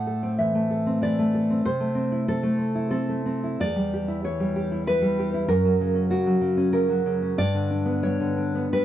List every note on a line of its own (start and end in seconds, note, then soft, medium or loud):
0.00 1.60 A2 medium
0.00 0.54 A3 medium
0.00 0.35 F#5 loud
0.07 0.69 A4 medium
0.23 0.85 C4 medium
0.39 1.00 E3 medium
0.39 0.99 E5 medium
0.55 1.18 A3 medium
0.70 1.33 A4 medium
0.86 1.49 C4 medium
1.02 1.64 E3 medium
1.02 1.63 D5 loud
1.19 1.65 A3 medium
1.34 1.65 A4 medium
1.50 1.65 C4 medium
1.65 3.55 C3 medium
1.65 2.24 C5 loud
1.80 2.42 A3 medium
1.95 2.27 C4 medium
2.12 2.74 E4 medium
2.28 2.57 C4 medium
2.28 2.88 A4 loud
2.43 3.08 A3 medium
2.58 2.90 C4 medium
2.75 3.42 E4 medium
2.91 3.25 C4 medium
2.91 3.56 A4 loud
3.09 3.60 A3 medium
3.26 3.60 C4 medium
3.44 3.60 E4 medium
3.60 5.45 E2 medium
3.60 4.20 D5 loud
3.76 4.25 G3 medium
3.93 4.55 G4 medium
4.08 4.70 E4 medium
4.25 4.86 E3 medium
4.25 4.84 C#5 loud
4.40 5.00 G3 medium
4.56 5.18 G4 medium
4.71 5.33 E4 medium
4.87 5.49 E3 medium
4.87 5.34 B4 loud
5.01 5.48 G3 medium
5.19 5.49 G4 medium
5.34 5.48 E4 medium
5.48 7.37 F#2 loud
5.48 6.08 A#4 loud
5.65 6.25 F#3 medium
5.81 6.09 C#3 medium
5.94 6.56 C#4 medium
6.10 6.40 C#3 medium
6.10 6.72 F#4 loud
6.26 6.88 F#3 medium
6.41 6.72 C#3 medium
6.57 7.21 C#4 medium
6.73 7.05 C#3 medium
6.73 7.37 A#4 loud
6.89 7.40 F#3 medium
7.06 7.40 C#3 medium
7.22 7.40 C#4 medium
7.38 8.85 G2 medium
7.38 8.02 D5 loud
7.54 8.19 D3 medium
7.70 8.36 D4 medium
7.85 8.54 B3 medium
8.03 8.72 G3 medium
8.03 8.70 C#5 loud
8.20 8.72 D3 medium
8.37 8.85 D4 medium
8.55 8.85 B3 medium
8.73 8.85 G3 medium
8.73 8.85 B4 loud